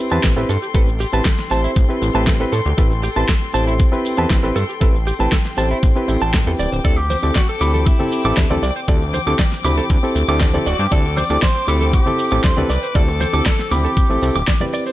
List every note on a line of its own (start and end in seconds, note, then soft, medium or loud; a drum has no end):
0.00 6.56 A4 medium
0.00 14.92 G5 medium
0.00 6.56 C6 medium
0.11 0.19 E2 medium
0.11 0.34 C4 medium
0.11 0.34 E4 medium
0.11 0.34 G4 medium
0.11 0.34 B4 loud
0.11 0.21 A5 medium
0.11 closed hi-hat medium
0.11 shaker soft
0.24 0.32 A1 medium
0.24 0.28 A4 medium
0.24 kick loud
0.24 snare loud
0.24 closed hi-hat medium
0.24 shaker soft
0.37 0.45 A1 medium
0.37 0.49 C4 medium
0.37 0.49 E4 medium
0.37 0.50 G4 medium
0.37 0.41 A4 medium
0.37 0.50 B4 loud
0.37 closed hi-hat soft
0.37 shaker soft
0.49 0.58 G2 loud
0.49 0.59 A4 loud
0.49 open hi-hat medium
0.49 shaker medium
0.62 0.66 G4 medium
0.62 closed hi-hat medium
0.62 shaker soft
0.74 1.05 A1 loud
0.74 0.88 C4 medium
0.74 0.88 E4 medium
0.74 0.88 G4 medium
0.74 0.81 A4 medium
0.74 0.88 B4 loud
0.74 kick loud
0.74 closed hi-hat medium
0.74 shaker soft
0.88 shaker soft
1.00 1.07 G4 medium
1.00 open hi-hat loud
1.00 shaker medium
1.13 1.21 A1 medium
1.13 1.26 C4 medium
1.13 1.26 E4 medium
1.13 1.26 G4 medium
1.13 1.26 B4 loud
1.13 1.23 A5 medium
1.13 closed hi-hat medium
1.13 shaker soft
1.25 1.30 A4 medium
1.25 kick loud
1.25 snare loud
1.25 closed hi-hat medium
1.25 shaker soft
1.39 snare soft
1.39 closed hi-hat soft
1.39 shaker soft
1.51 1.67 A1 medium
1.51 1.86 C4 medium
1.51 1.86 E4 medium
1.51 1.87 G4 medium
1.51 1.87 C5 medium
1.51 1.61 A5 medium
1.51 open hi-hat medium
1.51 shaker medium
1.64 1.70 E4 medium
1.64 closed hi-hat medium
1.64 shaker soft
1.76 1.85 A1 loud
1.76 kick loud
1.76 closed hi-hat medium
1.76 shaker soft
1.89 2.12 C4 loud
1.89 2.12 E4 medium
1.89 2.12 G4 medium
1.89 2.13 B4 loud
1.89 shaker soft
2.02 2.10 A1 medium
2.02 open hi-hat loud
2.02 shaker medium
2.14 2.45 A1 medium
2.14 2.37 C4 medium
2.14 2.37 E4 medium
2.14 2.37 G4 medium
2.14 2.37 B4 loud
2.14 2.24 A5 medium
2.14 closed hi-hat medium
2.14 shaker soft
2.27 2.31 A4 medium
2.27 kick loud
2.27 snare loud
2.27 closed hi-hat medium
2.27 shaker soft
2.40 2.53 C4 medium
2.40 2.53 E4 medium
2.40 2.53 G4 medium
2.40 2.44 A4 medium
2.40 2.53 B4 loud
2.40 closed hi-hat soft
2.40 shaker soft
2.53 2.61 A2 medium
2.53 2.62 A4 loud
2.53 open hi-hat medium
2.53 shaker medium
2.66 2.73 D2 loud
2.66 2.69 G4 medium
2.66 closed hi-hat medium
2.66 shaker soft
2.77 3.09 A1 loud
2.77 2.91 C4 medium
2.77 2.91 E4 medium
2.77 2.91 G4 medium
2.77 2.84 A4 medium
2.77 2.92 B4 loud
2.77 kick loud
2.77 closed hi-hat medium
2.77 shaker soft
2.92 shaker soft
3.03 3.10 G4 medium
3.03 open hi-hat loud
3.03 shaker medium
3.16 3.24 A1 medium
3.16 3.29 C4 medium
3.16 3.29 E4 medium
3.16 3.29 G4 medium
3.16 3.29 B4 loud
3.16 3.26 A5 medium
3.16 closed hi-hat medium
3.16 shaker soft
3.29 3.33 A4 medium
3.29 kick loud
3.29 snare loud
3.29 closed hi-hat medium
3.29 shaker soft
3.42 closed hi-hat soft
3.42 shaker soft
3.54 3.85 A1 medium
3.54 3.89 C4 medium
3.54 3.90 E4 medium
3.54 3.90 G4 medium
3.54 3.90 C5 medium
3.54 3.64 A5 medium
3.54 open hi-hat loud
3.54 shaker medium
3.67 3.73 E4 medium
3.67 closed hi-hat soft
3.67 shaker soft
3.80 kick loud
3.80 closed hi-hat medium
3.80 shaker soft
3.92 4.15 C4 loud
3.92 4.15 E4 medium
3.92 4.16 G4 medium
3.92 4.16 B4 loud
3.92 shaker soft
4.05 open hi-hat loud
4.05 shaker medium
4.18 4.26 E2 medium
4.18 4.40 C4 medium
4.18 4.40 E4 medium
4.18 4.41 G4 medium
4.18 4.41 B4 loud
4.18 4.28 A5 medium
4.18 closed hi-hat medium
4.18 shaker soft
4.30 4.39 A1 medium
4.30 4.34 A4 medium
4.30 kick loud
4.30 snare loud
4.30 closed hi-hat medium
4.30 shaker soft
4.43 4.51 A1 medium
4.43 4.56 C4 medium
4.43 4.56 E4 medium
4.43 4.56 G4 medium
4.43 4.47 A4 medium
4.43 4.56 B4 loud
4.43 closed hi-hat soft
4.43 shaker soft
4.56 4.64 G2 loud
4.56 4.66 A4 loud
4.56 open hi-hat loud
4.56 shaker medium
4.69 4.73 G4 medium
4.69 closed hi-hat medium
4.69 shaker soft
4.81 5.12 A1 loud
4.81 4.94 C4 medium
4.81 4.95 E4 medium
4.81 4.95 G4 medium
4.81 4.88 A4 medium
4.81 4.95 B4 loud
4.81 kick loud
4.81 closed hi-hat medium
4.81 shaker soft
4.95 shaker soft
5.07 5.13 G4 medium
5.07 open hi-hat loud
5.07 shaker medium
5.19 5.28 A1 medium
5.19 5.32 C4 medium
5.19 5.32 E4 medium
5.19 5.33 G4 medium
5.19 5.33 B4 loud
5.19 5.29 A5 medium
5.19 closed hi-hat medium
5.19 shaker soft
5.32 5.36 A4 medium
5.32 kick loud
5.32 snare loud
5.32 closed hi-hat medium
5.32 shaker soft
5.45 snare soft
5.45 closed hi-hat soft
5.45 shaker soft
5.57 5.74 A1 medium
5.57 5.93 C4 medium
5.57 5.93 E4 medium
5.57 5.93 G4 medium
5.57 5.93 C5 medium
5.57 5.68 A5 medium
5.57 open hi-hat medium
5.57 shaker medium
5.71 5.77 E4 medium
5.71 closed hi-hat soft
5.71 shaker soft
5.83 5.91 A1 medium
5.83 kick loud
5.83 closed hi-hat medium
5.83 shaker soft
5.96 6.06 C4 medium
5.96 6.06 E4 medium
5.96 6.06 G4 medium
5.96 6.06 B4 loud
5.96 shaker soft
6.08 6.17 A1 medium
6.08 6.22 C4 medium
6.08 6.22 E4 medium
6.08 6.22 G4 medium
6.08 6.22 A4 medium
6.08 open hi-hat loud
6.08 shaker medium
6.22 6.46 A1 medium
6.22 6.31 A5 medium
6.22 closed hi-hat soft
6.22 shaker soft
6.34 6.38 A4 medium
6.34 kick loud
6.34 snare loud
6.34 closed hi-hat medium
6.34 shaker soft
6.46 6.55 E2 loud
6.46 6.82 C4 medium
6.46 6.82 E4 medium
6.46 6.82 G4 medium
6.46 6.51 A4 medium
6.46 6.82 B4 medium
6.46 closed hi-hat soft
6.46 shaker soft
6.59 6.68 D1 medium
6.59 14.92 C4 medium
6.59 6.69 D5 loud
6.59 14.92 D6 medium
6.59 open hi-hat medium
6.59 shaker medium
6.72 6.80 D1 medium
6.72 6.76 C5 medium
6.72 closed hi-hat medium
6.72 shaker soft
6.84 7.15 D2 loud
6.84 6.98 C4 medium
6.84 6.98 E4 medium
6.84 6.98 G4 medium
6.84 6.99 A4 loud
6.84 6.98 A4 loud
6.84 6.91 D5 medium
6.84 kick loud
6.84 closed hi-hat medium
6.84 cabasa medium
6.84 shaker soft
6.97 7.35 G4 loud
6.97 cabasa soft
6.97 shaker soft
7.10 7.17 C5 medium
7.10 open hi-hat loud
7.10 high conga medium
7.10 cabasa medium
7.10 shaker medium
7.23 7.31 D2 medium
7.23 7.36 C4 medium
7.23 7.36 E4 medium
7.23 7.36 G4 medium
7.23 7.36 A4 loud
7.23 7.33 D6 medium
7.23 closed hi-hat medium
7.23 cabasa soft
7.23 shaker soft
7.36 7.48 F#4 loud
7.36 7.40 D5 medium
7.36 kick loud
7.36 snare loud
7.36 closed hi-hat medium
7.36 cabasa medium
7.36 shaker soft
7.49 7.88 A4 loud
7.49 closed hi-hat soft
7.49 cabasa soft
7.49 shaker soft
7.60 7.92 D2 medium
7.60 7.96 C4 medium
7.60 7.96 E4 medium
7.60 7.97 G4 medium
7.60 7.97 B5 medium
7.60 7.71 D6 medium
7.60 open hi-hat medium
7.60 cabasa medium
7.60 shaker medium
7.74 7.80 A4 medium
7.74 closed hi-hat soft
7.74 high conga medium
7.74 cabasa soft
7.74 shaker soft
7.86 8.63 E4 medium
7.86 kick loud
7.86 closed hi-hat medium
7.86 cabasa medium
7.86 shaker soft
7.99 8.22 C4 medium
7.99 8.22 E4 medium
7.99 8.23 G4 medium
7.99 8.23 A4 loud
7.99 low conga medium
7.99 cabasa soft
7.99 shaker soft
8.12 open hi-hat loud
8.12 cabasa loud
8.12 shaker medium
8.25 8.33 A1 medium
8.25 8.47 C4 medium
8.25 8.47 E4 medium
8.25 8.48 G4 medium
8.25 8.48 A4 medium
8.25 8.34 D6 medium
8.25 closed hi-hat medium
8.25 cabasa soft
8.25 shaker soft
8.37 8.46 D2 medium
8.37 8.41 D5 medium
8.37 kick loud
8.37 snare loud
8.37 closed hi-hat medium
8.37 cabasa medium
8.37 shaker soft
8.50 8.58 D2 medium
8.50 8.63 C4 medium
8.50 8.63 E4 medium
8.50 8.63 G4 medium
8.50 8.63 A4 loud
8.50 8.54 D5 medium
8.50 closed hi-hat soft
8.50 high bongo medium
8.50 high conga loud
8.50 low conga medium
8.50 cabasa soft
8.50 shaker soft
8.62 8.71 C2 loud
8.62 8.73 D5 loud
8.62 open hi-hat medium
8.62 cabasa medium
8.62 shaker medium
8.76 8.80 C5 medium
8.76 closed hi-hat medium
8.76 cabasa soft
8.76 shaker soft
8.88 9.19 D2 loud
8.88 9.01 C4 medium
8.88 9.02 E4 medium
8.88 9.02 G4 medium
8.88 9.02 A4 loud
8.88 8.95 D5 medium
8.88 kick loud
8.88 closed hi-hat medium
8.88 cabasa medium
8.88 shaker soft
9.02 cabasa soft
9.02 shaker soft
9.14 9.20 C5 medium
9.14 open hi-hat loud
9.14 high conga medium
9.14 cabasa medium
9.14 shaker medium
9.27 9.35 D2 medium
9.27 9.39 C4 medium
9.27 9.39 E4 medium
9.27 9.40 G4 medium
9.27 9.40 A4 medium
9.27 9.36 D6 medium
9.27 closed hi-hat medium
9.27 cabasa soft
9.27 shaker soft
9.39 9.43 D5 medium
9.39 kick loud
9.39 snare loud
9.39 closed hi-hat medium
9.39 cabasa medium
9.39 shaker soft
9.52 snare soft
9.52 closed hi-hat soft
9.52 cabasa soft
9.52 shaker soft
9.64 9.81 D2 medium
9.64 10.00 C4 medium
9.64 10.00 E4 medium
9.64 10.00 G4 medium
9.64 10.00 B5 medium
9.64 9.74 D6 medium
9.64 open hi-hat medium
9.64 high bongo medium
9.64 low conga medium
9.64 cabasa medium
9.64 shaker medium
9.78 9.84 A4 medium
9.78 closed hi-hat medium
9.78 high conga medium
9.78 cabasa soft
9.78 shaker soft
9.90 9.98 D2 loud
9.90 kick loud
9.90 closed hi-hat medium
9.90 cabasa medium
9.90 shaker soft
10.03 10.26 C4 loud
10.03 10.26 E4 medium
10.03 10.26 G4 medium
10.03 10.26 A4 loud
10.03 cabasa soft
10.03 shaker soft
10.15 10.24 D2 loud
10.15 open hi-hat loud
10.15 cabasa loud
10.15 shaker medium
10.28 10.59 D2 medium
10.28 10.51 C4 medium
10.28 10.51 E4 medium
10.28 10.51 G4 medium
10.28 10.51 A4 medium
10.28 10.38 D6 medium
10.28 closed hi-hat medium
10.28 cabasa soft
10.28 shaker soft
10.41 10.45 D5 medium
10.41 kick loud
10.41 snare loud
10.41 closed hi-hat medium
10.41 cabasa medium
10.41 shaker soft
10.54 10.66 C4 medium
10.54 10.67 E4 medium
10.54 10.67 G4 medium
10.54 10.67 A4 loud
10.54 10.58 D5 medium
10.54 closed hi-hat soft
10.54 high conga medium
10.54 low conga medium
10.54 cabasa soft
10.54 shaker soft
10.66 10.74 D1 medium
10.66 10.81 F#4 medium
10.66 10.76 D5 loud
10.66 open hi-hat medium
10.66 cabasa medium
10.66 shaker medium
10.79 10.87 G2 loud
10.79 10.92 G4 medium
10.79 10.83 C5 medium
10.79 closed hi-hat medium
10.79 cabasa soft
10.79 shaker soft
10.91 11.22 D2 loud
10.91 11.05 C4 medium
10.91 11.05 E4 medium
10.91 11.05 G4 medium
10.91 11.05 A4 loud
10.91 11.19 A4 loud
10.91 10.98 D5 medium
10.91 kick loud
10.91 closed hi-hat medium
10.91 cabasa medium
10.91 shaker soft
11.05 cabasa soft
11.05 shaker soft
11.16 11.24 C5 medium
11.16 11.43 D5 loud
11.16 open hi-hat loud
11.16 high conga medium
11.16 cabasa loud
11.16 shaker medium
11.30 11.38 D2 medium
11.30 11.43 C4 medium
11.30 11.43 E4 medium
11.30 11.43 G4 medium
11.30 11.43 A4 loud
11.30 11.39 D6 medium
11.30 closed hi-hat medium
11.30 cabasa soft
11.30 shaker soft
11.42 11.67 C5 loud
11.42 11.47 D5 medium
11.42 kick loud
11.42 snare loud
11.42 closed hi-hat medium
11.42 cabasa medium
11.42 shaker soft
11.55 closed hi-hat soft
11.55 cabasa soft
11.55 shaker soft
11.67 11.99 D2 medium
11.67 12.03 C4 medium
11.67 12.03 E4 medium
11.67 12.03 G4 medium
11.67 11.92 A4 loud
11.67 12.04 B5 medium
11.67 11.78 D6 medium
11.67 open hi-hat medium
11.67 cabasa loud
11.67 shaker medium
11.81 11.87 A4 medium
11.81 closed hi-hat medium
11.81 high conga medium
11.81 cabasa soft
11.81 shaker soft
11.93 12.46 G4 loud
11.93 kick loud
11.93 closed hi-hat medium
11.93 cabasa medium
11.93 shaker soft
12.06 12.29 C4 loud
12.06 12.29 E4 medium
12.06 12.29 G4 medium
12.06 12.29 A4 loud
12.06 low conga medium
12.06 cabasa soft
12.06 shaker soft
12.19 open hi-hat loud
12.19 cabasa loud
12.19 shaker medium
12.31 12.40 A1 medium
12.31 12.54 C4 medium
12.31 12.54 E4 medium
12.31 12.54 G4 medium
12.31 12.54 A4 loud
12.31 12.41 D6 medium
12.31 closed hi-hat medium
12.31 cabasa soft
12.31 shaker soft
12.44 12.52 D2 medium
12.44 12.59 C5 loud
12.44 12.48 D5 medium
12.44 kick loud
12.44 snare loud
12.44 closed hi-hat medium
12.44 cabasa medium
12.44 shaker soft
12.57 12.65 D2 medium
12.57 12.70 C4 medium
12.57 12.70 E4 medium
12.57 12.70 G4 medium
12.57 12.70 A4 loud
12.57 12.97 B4 loud
12.57 12.61 D5 medium
12.57 closed hi-hat soft
12.57 high bongo medium
12.57 high conga medium
12.57 low conga medium
12.57 cabasa soft
12.57 shaker soft
12.70 12.78 C2 loud
12.70 12.79 D5 loud
12.70 open hi-hat medium
12.70 cabasa loud
12.70 shaker medium
12.83 12.87 C5 medium
12.83 closed hi-hat medium
12.83 cabasa soft
12.83 shaker soft
12.95 13.26 D2 loud
12.95 13.08 C4 medium
12.95 13.08 E4 medium
12.95 13.09 G4 medium
12.95 13.09 A4 loud
12.95 13.74 A4 loud
12.95 13.02 D5 medium
12.95 kick loud
12.95 closed hi-hat medium
12.95 cabasa medium
12.95 shaker soft
13.08 closed hi-hat soft
13.08 high bongo medium
13.08 cabasa soft
13.08 shaker soft
13.20 13.27 C5 medium
13.20 open hi-hat loud
13.20 high bongo soft
13.20 high conga loud
13.20 cabasa loud
13.20 shaker medium
13.33 13.41 D2 medium
13.33 13.46 C4 medium
13.33 13.46 E4 medium
13.33 13.46 G4 medium
13.33 13.46 A4 loud
13.33 13.43 D6 medium
13.33 closed hi-hat medium
13.33 cabasa soft
13.33 shaker soft
13.45 13.50 D5 medium
13.45 kick loud
13.45 snare loud
13.45 closed hi-hat medium
13.45 cabasa medium
13.45 shaker soft
13.59 snare soft
13.59 closed hi-hat soft
13.59 cabasa soft
13.59 shaker soft
13.71 13.88 D2 medium
13.71 14.07 C4 medium
13.71 14.07 E4 medium
13.71 14.07 G4 medium
13.71 14.73 G4 medium
13.71 14.07 B5 medium
13.71 13.81 D6 medium
13.71 open hi-hat medium
13.71 high bongo medium
13.71 low conga loud
13.71 cabasa loud
13.71 shaker medium
13.84 13.91 A4 medium
13.84 closed hi-hat medium
13.84 high conga medium
13.84 cabasa soft
13.84 shaker soft
13.97 kick loud
13.97 closed hi-hat medium
13.97 cabasa medium
13.97 shaker soft
14.09 14.18 A1 medium
14.09 14.20 C4 loud
14.09 14.20 E4 medium
14.09 14.20 G4 medium
14.09 14.20 A4 loud
14.09 closed hi-hat soft
14.09 cabasa soft
14.09 shaker soft
14.21 14.30 C2 medium
14.21 14.35 C4 medium
14.21 14.36 E4 medium
14.21 14.36 G4 medium
14.21 14.36 A4 medium
14.21 open hi-hat loud
14.21 cabasa medium
14.21 shaker medium
14.35 14.43 D1 loud
14.35 14.45 D6 medium
14.35 closed hi-hat medium
14.35 cabasa soft
14.35 shaker soft
14.48 14.52 D5 medium
14.48 kick loud
14.48 snare loud
14.48 closed hi-hat medium
14.48 cabasa medium
14.48 shaker soft
14.60 14.92 C4 medium
14.60 14.92 E4 medium
14.60 14.92 G4 medium
14.60 14.92 B4 medium
14.60 14.65 D5 medium
14.60 closed hi-hat soft
14.60 high conga medium
14.60 low conga medium
14.60 cabasa soft
14.60 shaker soft
14.73 14.83 D5 loud
14.73 open hi-hat medium
14.73 high bongo soft
14.73 cabasa medium
14.73 shaker medium
14.86 14.90 C5 medium
14.86 closed hi-hat medium
14.86 cabasa soft
14.86 shaker soft